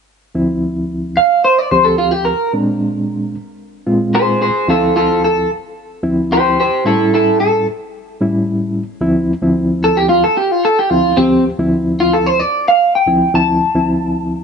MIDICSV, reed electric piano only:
0, 0, Header, 1, 2, 480
1, 0, Start_track
1, 0, Key_signature, -1, "minor"
1, 0, Tempo, 541028
1, 314, Time_signature, 4, 2, 24, 8
1, 12809, End_track
2, 0, Start_track
2, 0, Title_t, "Reed electric piano"
2, 0, Program_c, 0, 4
2, 307, Note_on_c, 0, 53, 59
2, 309, Note_on_c, 0, 38, 75
2, 312, Note_on_c, 0, 60, 61
2, 313, Note_on_c, 0, 64, 74
2, 1035, Note_off_c, 0, 53, 0
2, 1036, Note_off_c, 0, 38, 0
2, 1037, Note_off_c, 0, 60, 0
2, 1038, Note_off_c, 0, 64, 0
2, 1521, Note_on_c, 0, 53, 56
2, 1522, Note_on_c, 0, 38, 67
2, 1525, Note_on_c, 0, 60, 53
2, 1525, Note_on_c, 0, 67, 69
2, 2065, Note_off_c, 0, 38, 0
2, 2065, Note_off_c, 0, 53, 0
2, 2066, Note_off_c, 0, 60, 0
2, 2067, Note_off_c, 0, 67, 0
2, 2245, Note_on_c, 0, 60, 55
2, 2246, Note_on_c, 0, 46, 61
2, 2249, Note_on_c, 0, 56, 60
2, 2249, Note_on_c, 0, 62, 65
2, 2965, Note_off_c, 0, 46, 0
2, 2965, Note_off_c, 0, 60, 0
2, 2967, Note_off_c, 0, 56, 0
2, 2967, Note_off_c, 0, 62, 0
2, 3428, Note_on_c, 0, 56, 70
2, 3430, Note_on_c, 0, 65, 81
2, 3431, Note_on_c, 0, 46, 72
2, 3434, Note_on_c, 0, 60, 68
2, 3980, Note_off_c, 0, 56, 0
2, 3980, Note_off_c, 0, 65, 0
2, 3981, Note_off_c, 0, 46, 0
2, 3982, Note_off_c, 0, 60, 0
2, 4149, Note_on_c, 0, 53, 59
2, 4150, Note_on_c, 0, 38, 65
2, 4152, Note_on_c, 0, 60, 57
2, 4153, Note_on_c, 0, 64, 69
2, 4878, Note_off_c, 0, 53, 0
2, 4879, Note_off_c, 0, 38, 0
2, 4880, Note_off_c, 0, 60, 0
2, 4880, Note_off_c, 0, 64, 0
2, 5348, Note_on_c, 0, 53, 59
2, 5351, Note_on_c, 0, 60, 67
2, 5352, Note_on_c, 0, 38, 70
2, 5354, Note_on_c, 0, 64, 82
2, 5900, Note_off_c, 0, 53, 0
2, 5901, Note_off_c, 0, 60, 0
2, 5902, Note_off_c, 0, 38, 0
2, 5903, Note_off_c, 0, 64, 0
2, 6074, Note_on_c, 0, 45, 63
2, 6079, Note_on_c, 0, 55, 56
2, 6080, Note_on_c, 0, 61, 59
2, 6081, Note_on_c, 0, 64, 67
2, 6801, Note_off_c, 0, 45, 0
2, 6803, Note_off_c, 0, 55, 0
2, 6804, Note_off_c, 0, 61, 0
2, 6804, Note_off_c, 0, 64, 0
2, 7284, Note_on_c, 0, 45, 71
2, 7284, Note_on_c, 0, 61, 59
2, 7285, Note_on_c, 0, 55, 69
2, 7291, Note_on_c, 0, 64, 78
2, 7827, Note_off_c, 0, 45, 0
2, 7828, Note_off_c, 0, 55, 0
2, 7828, Note_off_c, 0, 61, 0
2, 7831, Note_off_c, 0, 64, 0
2, 7991, Note_on_c, 0, 38, 80
2, 7997, Note_on_c, 0, 60, 74
2, 7998, Note_on_c, 0, 53, 71
2, 7998, Note_on_c, 0, 64, 95
2, 8268, Note_off_c, 0, 38, 0
2, 8271, Note_off_c, 0, 60, 0
2, 8272, Note_off_c, 0, 53, 0
2, 8272, Note_off_c, 0, 64, 0
2, 8360, Note_on_c, 0, 38, 77
2, 8360, Note_on_c, 0, 53, 75
2, 8361, Note_on_c, 0, 60, 74
2, 8362, Note_on_c, 0, 64, 76
2, 9085, Note_off_c, 0, 38, 0
2, 9085, Note_off_c, 0, 53, 0
2, 9086, Note_off_c, 0, 60, 0
2, 9086, Note_off_c, 0, 64, 0
2, 9674, Note_on_c, 0, 38, 68
2, 9676, Note_on_c, 0, 53, 61
2, 9678, Note_on_c, 0, 60, 66
2, 9681, Note_on_c, 0, 64, 69
2, 9859, Note_off_c, 0, 38, 0
2, 9861, Note_off_c, 0, 53, 0
2, 9862, Note_off_c, 0, 60, 0
2, 9863, Note_off_c, 0, 64, 0
2, 9913, Note_on_c, 0, 60, 56
2, 9914, Note_on_c, 0, 38, 64
2, 9917, Note_on_c, 0, 53, 54
2, 9919, Note_on_c, 0, 67, 74
2, 10188, Note_off_c, 0, 38, 0
2, 10188, Note_off_c, 0, 60, 0
2, 10189, Note_off_c, 0, 53, 0
2, 10191, Note_off_c, 0, 67, 0
2, 10280, Note_on_c, 0, 38, 80
2, 10280, Note_on_c, 0, 53, 73
2, 10285, Note_on_c, 0, 64, 88
2, 10287, Note_on_c, 0, 60, 72
2, 11003, Note_off_c, 0, 38, 0
2, 11003, Note_off_c, 0, 53, 0
2, 11005, Note_off_c, 0, 64, 0
2, 11006, Note_off_c, 0, 60, 0
2, 11592, Note_on_c, 0, 38, 67
2, 11599, Note_on_c, 0, 53, 67
2, 11600, Note_on_c, 0, 60, 65
2, 11600, Note_on_c, 0, 64, 78
2, 11776, Note_off_c, 0, 38, 0
2, 11780, Note_off_c, 0, 53, 0
2, 11780, Note_off_c, 0, 60, 0
2, 11780, Note_off_c, 0, 64, 0
2, 11830, Note_on_c, 0, 38, 61
2, 11834, Note_on_c, 0, 60, 57
2, 11836, Note_on_c, 0, 53, 60
2, 11836, Note_on_c, 0, 64, 79
2, 12104, Note_off_c, 0, 38, 0
2, 12106, Note_off_c, 0, 60, 0
2, 12107, Note_off_c, 0, 53, 0
2, 12107, Note_off_c, 0, 64, 0
2, 12200, Note_on_c, 0, 38, 68
2, 12200, Note_on_c, 0, 60, 65
2, 12203, Note_on_c, 0, 53, 58
2, 12204, Note_on_c, 0, 64, 76
2, 12809, Note_off_c, 0, 38, 0
2, 12809, Note_off_c, 0, 53, 0
2, 12809, Note_off_c, 0, 60, 0
2, 12809, Note_off_c, 0, 64, 0
2, 12809, End_track
0, 0, End_of_file